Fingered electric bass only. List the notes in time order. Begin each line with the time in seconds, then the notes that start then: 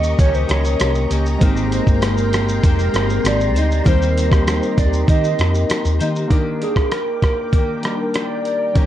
Already playing: D#2
0.19 C#2
0.49 C#2
0.80 C2
1.11 C#2
1.41 G#1
1.87 G1
2.63 F1
2.94 G1
3.24 G#1
3.55 D2
3.86 D#2
4.78 D#2
5.08 D#3
5.39 F2
5.70 muted fingered electric bass stroke
5.85 D#2
6.00 D#3